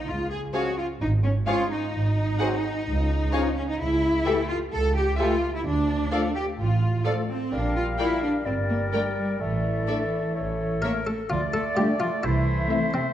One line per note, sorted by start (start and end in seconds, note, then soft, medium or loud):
0.07 0.46 C#2 medium
0.07 0.30 F4 medium
0.30 0.38 G#4 medium
0.53 0.70 F3 soft
0.53 0.69 G#3 soft
0.53 0.69 C#4 soft
0.53 0.77 F#4 medium
0.53 0.62 G#4 soft
0.53 0.69 C#5 soft
0.53 0.62 C#5 soft
0.53 0.63 F5 soft
0.53 0.62 G#5 soft
0.77 0.85 F4 medium
1.01 1.40 G#1 medium
1.01 1.09 D#4 medium
1.24 1.32 C#4 medium
1.46 1.63 F3 medium
1.46 1.62 G#3 medium
1.46 1.62 C#4 soft
1.46 1.70 F4 medium
1.46 1.55 G#4 medium
1.46 1.63 C#5 medium
1.46 1.55 C#5 soft
1.46 1.55 F5 medium
1.46 1.55 G#5 medium
1.70 3.53 D#4 medium
1.94 2.32 G#1 medium
2.39 2.56 F#3 soft
2.39 2.55 C4 medium
2.39 2.55 F#4 medium
2.39 2.48 G#4 medium
2.39 2.56 C5 medium
2.39 2.49 C5 medium
2.39 2.48 F#5 medium
2.39 2.48 G#5 medium
2.87 3.26 C#2 medium
3.32 3.49 F3 medium
3.32 3.49 C#4 medium
3.32 3.49 F4 medium
3.32 3.41 G#4 medium
3.32 3.41 C#5 medium
3.32 3.49 C#5 medium
3.32 3.40 F5 soft
3.32 3.41 G#5 medium
3.56 3.68 C#4 medium
3.69 3.80 D#4 medium
3.80 4.19 C#2 medium
3.80 4.48 E4 medium
4.25 4.42 E3 soft
4.25 4.43 A3 medium
4.25 4.35 G4 medium
4.25 4.43 G4 medium
4.25 4.42 A4 medium
4.25 4.34 A4 medium
4.25 4.33 E5 medium
4.25 4.34 G5 medium
4.49 4.57 F4 medium
4.72 5.12 C#2 medium
4.72 4.95 A4 medium
4.96 5.19 G4 medium
5.18 5.35 E3 medium
5.18 5.36 A3 medium
5.18 5.53 F4 medium
5.18 5.27 G4 soft
5.18 5.36 G4 medium
5.18 5.35 A4 medium
5.18 5.28 A4 medium
5.18 5.26 E5 medium
5.18 5.28 G5 medium
5.55 5.66 E4 medium
5.65 6.04 D2 medium
5.65 6.34 D4 medium
6.11 6.28 F3 soft
6.11 6.29 A3 soft
6.11 6.29 F4 soft
6.11 6.27 A4 soft
6.11 6.20 A4 medium
6.11 6.20 D5 medium
6.11 6.21 F5 medium
6.11 6.20 F5 medium
6.35 6.43 G4 medium
6.59 6.98 A1 medium
6.59 7.05 F4 medium
7.05 7.22 F3 medium
7.05 7.22 A3 medium
7.05 7.22 F4 soft
7.05 7.13 A4 medium
7.05 7.21 A4 medium
7.05 7.13 D5 soft
7.05 7.14 F5 medium
7.05 7.13 F5 soft
7.29 7.51 C4 medium
7.52 7.91 A#1 medium
7.52 8.42 G3 medium
7.52 7.76 D4 medium
7.52 8.42 A#4 medium
7.52 8.47 F5 medium
7.76 7.84 F4 medium
7.99 8.15 G3 soft
7.99 8.22 E4 medium
7.99 8.15 F4 soft
7.99 8.07 A#4 medium
7.99 8.07 D5 soft
7.99 8.07 G5 soft
8.23 8.31 D4 medium
8.45 8.85 G1 medium
8.45 9.42 G3 medium
8.45 8.54 C4 medium
8.45 9.42 A#4 medium
8.45 9.39 D5 medium
8.69 8.77 A#3 medium
8.93 9.09 G3 soft
8.93 9.01 A3 medium
8.93 9.09 D4 soft
8.93 9.01 A#4 soft
8.93 9.01 D5 soft
8.93 9.01 G5 soft
9.16 9.40 G3 medium
9.39 9.80 A1 medium
9.39 10.80 E3 medium
9.39 10.34 A3 soft
9.39 10.35 A4 soft
9.39 10.37 D5 soft
9.88 10.04 A3 soft
9.88 10.04 D4 soft
9.88 9.96 A4 soft
9.88 9.96 D5 soft
9.88 9.96 E5 soft
10.35 10.75 A1 soft
10.35 11.05 A3 soft
10.35 10.82 A4 soft
10.35 11.06 C#5 soft
10.82 10.98 A3 soft
10.82 10.91 A#3 medium
10.82 10.98 C#4 soft
10.82 10.90 A4 soft
10.82 11.04 A#4 medium
10.82 11.09 A#4 medium
10.82 10.91 C#5 soft
10.82 10.91 E5 soft
11.07 11.15 A3 soft
11.07 11.28 A4 medium
11.07 11.30 A4 medium
11.30 11.67 D2 medium
11.30 11.38 F3 medium
11.30 13.13 A3 medium
11.30 11.52 F4 medium
11.30 11.41 F4 medium
11.30 12.26 D5 medium
11.54 11.62 A3 medium
11.54 11.75 A4 medium
11.54 11.64 A4 medium
11.76 11.85 G3 medium
11.76 11.92 A3 soft
11.76 12.12 A3 medium
11.76 11.92 D4 soft
11.76 12.12 F4 medium
11.76 11.99 G4 medium
11.76 11.88 G4 medium
11.76 12.12 D5 medium
12.00 12.09 F3 medium
12.00 12.22 F4 medium
12.00 12.11 F4 medium
12.23 12.61 C2 medium
12.23 12.93 E3 medium
12.23 12.90 E4 medium
12.23 12.93 E4 medium
12.23 13.13 C5 medium
12.23 13.13 E5 medium
12.70 13.05 A3 medium
12.70 12.87 A3 medium
12.70 13.06 C4 medium
12.70 12.87 E4 medium
12.70 13.05 E5 medium
12.94 13.02 C3 medium
12.94 13.13 C4 medium
12.94 13.05 C4 medium